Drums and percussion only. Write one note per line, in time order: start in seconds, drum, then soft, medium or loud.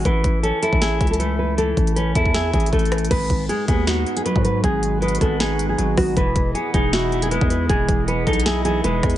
0.05 kick loud
0.05 closed hi-hat medium
0.24 kick loud
0.24 closed hi-hat medium
0.44 closed hi-hat medium
0.63 closed hi-hat medium
0.73 kick medium
0.82 snare loud
0.82 closed hi-hat medium
1.01 kick loud
1.01 closed hi-hat soft
1.07 closed hi-hat medium
1.13 closed hi-hat medium
1.20 closed hi-hat medium
1.58 closed hi-hat medium
1.77 kick loud
1.77 closed hi-hat soft
1.87 closed hi-hat medium
1.96 closed hi-hat medium
2.15 kick loud
2.15 closed hi-hat medium
2.26 kick medium
2.34 snare loud
2.34 closed hi-hat medium
2.54 kick loud
2.54 closed hi-hat soft
2.60 closed hi-hat medium
2.66 closed hi-hat medium
2.73 kick loud
2.73 closed hi-hat soft
2.79 closed hi-hat medium
2.85 closed hi-hat medium
2.92 cross-stick loud
2.92 closed hi-hat medium
2.92 open hi-hat medium
2.98 closed hi-hat medium
3.05 closed hi-hat medium
3.11 kick loud
3.11 closed hi-hat medium
3.11 crash loud
3.30 kick loud
3.30 closed hi-hat medium
3.49 closed hi-hat medium
3.68 kick loud
3.68 closed hi-hat medium
3.87 snare loud
3.87 closed hi-hat medium
4.06 closed hi-hat soft
4.17 closed hi-hat medium
4.26 closed hi-hat medium
4.36 kick loud
4.45 closed hi-hat medium
4.64 kick loud
4.64 closed hi-hat medium
4.83 closed hi-hat medium
5.02 closed hi-hat soft
5.08 closed hi-hat medium
5.15 closed hi-hat medium
5.21 kick loud
5.21 closed hi-hat medium
5.40 snare loud
5.40 closed hi-hat medium
5.59 closed hi-hat medium
5.78 closed hi-hat medium
5.97 kick medium
5.97 cross-stick loud
5.97 open hi-hat medium
6.17 kick loud
6.17 closed hi-hat medium
6.36 kick loud
6.36 closed hi-hat medium
6.55 closed hi-hat medium
6.74 kick loud
6.74 closed hi-hat medium
6.93 snare loud
6.93 closed hi-hat medium
7.12 closed hi-hat soft
7.22 closed hi-hat medium
7.31 closed hi-hat medium
7.41 kick loud
7.50 closed hi-hat medium
7.70 kick loud
7.70 closed hi-hat medium
7.89 kick loud
7.89 closed hi-hat medium
8.08 closed hi-hat medium
8.27 kick medium
8.27 closed hi-hat medium
8.33 closed hi-hat medium
8.40 closed hi-hat medium
8.46 snare loud
8.46 closed hi-hat medium
8.65 closed hi-hat medium
8.84 closed hi-hat medium
9.03 kick medium
9.03 cross-stick loud
9.03 closed hi-hat medium
9.03 open hi-hat medium
9.10 closed hi-hat medium